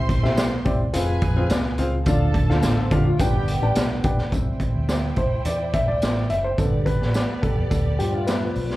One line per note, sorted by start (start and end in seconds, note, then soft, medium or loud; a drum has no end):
0.00 0.18 C2 loud
0.00 0.65 G3 medium
0.00 0.22 C4 medium
0.00 0.65 E4 medium
0.00 0.65 C5 medium
0.00 0.65 C6 loud
0.09 kick medium
0.09 closed hi-hat medium
0.23 0.60 B1 medium
0.23 0.45 C4 medium
0.23 0.45 E4 medium
0.23 0.46 G4 medium
0.23 0.45 C5 medium
0.23 0.46 E5 medium
0.23 snare soft
0.37 snare loud
0.37 closed hi-hat medium
0.37 tambourine loud
0.65 0.90 C2 medium
0.65 0.80 C4 medium
0.65 0.80 E4 medium
0.65 0.80 G4 medium
0.65 0.80 C5 medium
0.65 0.80 D5 loud
0.65 kick medium
0.65 closed hi-hat medium
0.93 1.18 F1 loud
0.93 1.76 G#3 medium
0.93 1.16 C4 medium
0.93 1.16 F4 medium
0.93 1.77 F4 medium
0.93 1.16 G#4 medium
0.93 1.77 G#4 medium
0.93 1.77 B4 medium
0.93 1.16 C5 medium
0.93 1.16 F5 medium
0.93 1.77 G#5 loud
0.93 closed hi-hat loud
0.93 tambourine medium
1.21 1.47 F2 loud
1.21 kick loud
1.21 closed hi-hat medium
1.36 1.58 C4 medium
1.36 1.58 F4 medium
1.36 1.58 G#4 medium
1.36 1.58 C5 medium
1.36 1.59 F5 loud
1.50 1.75 C2 medium
1.50 snare loud
1.50 closed hi-hat loud
1.50 tambourine medium
1.78 2.03 C#2 loud
1.78 1.93 C4 medium
1.78 1.93 F4 medium
1.78 1.93 G#4 medium
1.78 1.94 C5 medium
1.78 1.93 F5 loud
1.78 closed hi-hat medium
2.06 2.43 D2 loud
2.06 2.88 D3 medium
2.06 2.89 F3 medium
2.06 2.89 D4 medium
2.06 2.29 D4 medium
2.06 2.29 F4 medium
2.06 2.89 A4 medium
2.06 2.29 A4 medium
2.06 2.29 D5 medium
2.06 2.29 F5 medium
2.06 2.89 A5 medium
2.06 kick loud
2.06 closed hi-hat medium
2.06 tambourine medium
2.34 kick medium
2.34 closed hi-hat medium
2.49 2.62 D2 medium
2.49 2.71 D4 medium
2.49 2.71 F4 medium
2.49 2.71 A4 medium
2.49 2.71 D5 medium
2.49 2.71 F5 loud
2.49 snare soft
2.63 2.87 A1 medium
2.63 snare loud
2.63 closed hi-hat medium
2.63 tambourine loud
2.77 2.91 C4 medium
2.77 2.91 A4 medium
2.91 3.16 D3 medium
2.91 3.05 B3 medium
2.91 3.06 D4 medium
2.91 3.06 F4 medium
2.91 3.05 G4 medium
2.91 3.06 A4 medium
2.91 3.07 D5 medium
2.91 3.07 F5 loud
2.91 kick loud
2.91 closed hi-hat medium
3.05 3.19 A3 medium
3.05 3.19 F4 medium
3.19 3.56 G1 loud
3.19 4.01 G2 medium
3.19 4.02 D3 medium
3.19 3.33 F3 medium
3.19 4.02 B3 medium
3.19 3.33 D4 medium
3.19 3.42 D4 medium
3.19 4.02 G4 medium
3.19 3.42 G4 medium
3.19 3.42 B4 medium
3.19 3.42 D5 medium
3.19 4.02 G5 loud
3.19 3.42 G5 loud
3.19 kick loud
3.19 closed hi-hat loud
3.19 tambourine medium
3.34 4.15 D3 medium
3.34 4.14 B3 medium
3.48 closed hi-hat medium
3.61 3.74 A1 medium
3.61 3.84 D4 medium
3.61 3.84 G4 medium
3.61 3.84 B4 medium
3.61 3.84 D5 medium
3.61 3.84 A5 medium
3.75 4.00 B1 medium
3.75 snare loud
3.75 closed hi-hat loud
3.75 tambourine medium
4.04 4.28 B1 medium
4.04 4.19 D4 medium
4.04 4.19 G4 medium
4.04 4.19 B4 medium
4.04 4.19 D5 medium
4.04 4.20 G5 loud
4.04 kick loud
4.04 closed hi-hat medium
4.18 snare soft
4.32 4.69 C2 medium
4.32 5.13 E3 medium
4.32 5.14 G3 soft
4.32 5.14 C4 medium
4.32 6.54 E4 medium
4.32 6.54 C5 medium
4.32 6.55 G5 medium
4.32 kick loud
4.32 closed hi-hat medium
4.32 tambourine medium
4.60 kick medium
4.60 closed hi-hat medium
4.74 5.11 D2 medium
4.89 snare loud
4.89 closed hi-hat medium
4.89 tambourine loud
5.16 5.41 C2 medium
5.16 5.47 C5 medium
5.16 kick medium
5.16 closed hi-hat medium
5.45 5.82 E2 medium
5.45 5.75 D5 medium
5.45 closed hi-hat loud
5.45 tambourine medium
5.73 5.88 E5 loud
5.73 kick medium
5.73 closed hi-hat medium
5.88 6.00 C2 medium
5.88 6.27 D5 loud
6.02 6.26 A1 medium
6.02 snare loud
6.02 closed hi-hat loud
6.02 tambourine medium
6.30 6.55 F#1 medium
6.30 6.43 E5 medium
6.30 closed hi-hat medium
6.44 6.59 C5 medium
6.58 6.95 G1 loud
6.58 6.96 D3 medium
6.58 6.96 G3 soft
6.58 8.77 B3 medium
6.58 6.97 B3 medium
6.58 8.77 G4 medium
6.58 6.87 A4 medium
6.58 8.77 D5 medium
6.58 kick loud
6.58 closed hi-hat medium
6.58 tambourine medium
6.86 7.44 B4 medium
6.86 kick medium
6.86 closed hi-hat medium
7.01 7.25 A1 medium
7.01 snare soft
7.14 snare loud
7.14 closed hi-hat medium
7.14 tambourine loud
7.42 7.55 B1 medium
7.42 7.69 A4 medium
7.42 kick medium
7.42 closed hi-hat medium
7.57 7.69 E2 medium
7.70 7.96 D2 medium
7.70 7.97 A4 medium
7.70 kick loud
7.70 closed hi-hat loud
7.70 tambourine medium
7.99 8.48 G2 loud
7.99 8.13 F3 medium
7.99 8.13 D4 medium
7.99 8.25 G4 medium
7.99 closed hi-hat medium
8.14 8.27 A3 medium
8.14 8.27 F4 medium
8.27 8.42 G3 medium
8.27 8.41 E4 medium
8.27 8.77 B4 medium
8.27 snare loud
8.27 closed hi-hat loud
8.27 tambourine medium
8.42 8.77 F3 medium
8.42 8.77 D4 medium
8.55 8.77 B1 medium
8.55 open hi-hat medium
8.70 snare soft